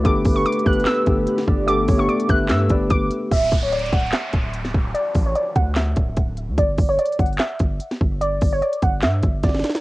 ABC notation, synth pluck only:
X:1
M:4/4
L:1/16
Q:1/4=147
K:Glyd
V:1 name="Synth pluck"
d'3 c' d'2 f'2 e'8 | d'3 c' d'2 f'2 e'4 d'4 | e3 c d2 f2 e8 | d3 c d2 f2 e8 |
d3 c d2 f2 e8 | d3 c d2 f2 e4 d4 |]